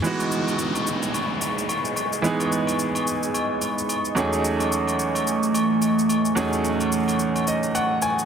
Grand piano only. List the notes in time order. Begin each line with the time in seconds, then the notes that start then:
0.02 E3 G#3 B3 D#4
0.06 F#4
2.22 E3 G#3 B3 D#4
2.26 G#4
4.15 E2 F#3 A3 C#4 D#4
4.19 G#4
6.35 E2 F#3 A3 C#4 D#4
6.39 G#4
7.47 D#5
7.75 F#5
8.02 G#5